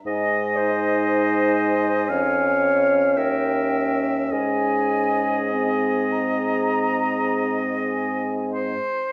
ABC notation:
X:1
M:4/4
L:1/8
Q:1/4=51
K:Ab
V:1 name="Flute"
a6 g2 | a2 a b3 a c |]
V:2 name="Oboe"
e4 f2 _f2 | e6- e c |]
V:3 name="Clarinet"
e c3 d2 B2 | A6- A z |]
V:4 name="French horn"
E4 D4- | D2 C4- C z |]
V:5 name="Bassoon" clef=bass
A,,4 F,,2 E,,2 | A,,6- A,, z |]